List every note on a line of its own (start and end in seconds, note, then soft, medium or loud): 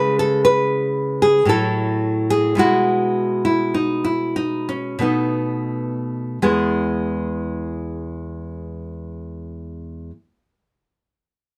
0.00 1.44 C#3 medium
0.00 1.44 G#3 medium
0.00 1.45 E4 medium
0.00 0.19 B4 medium
0.19 0.44 A4 medium
0.45 1.20 B4 medium
1.22 1.49 G#4 medium
1.45 2.53 A2 medium
1.45 2.54 F#3 soft
1.45 2.55 E4 medium
1.45 2.28 A4 medium
2.30 2.58 G#4 medium
2.55 4.97 B2 medium
2.55 4.97 G#3 soft
2.55 3.44 E4 soft
2.59 3.42 F#4 medium
3.45 3.75 E4 medium
3.74 4.05 D#4 medium
4.04 4.36 E4 medium
4.36 4.69 D#4 medium
4.69 5.01 C#4 medium
4.99 6.38 B2 medium
4.99 6.39 A3 soft
4.99 6.39 B3 soft
4.99 6.40 D#4 medium
6.42 10.10 E2 medium
6.42 10.10 G#3 soft
6.42 10.11 B3 soft
6.42 10.11 E4 soft
6.42 10.11 G#4 soft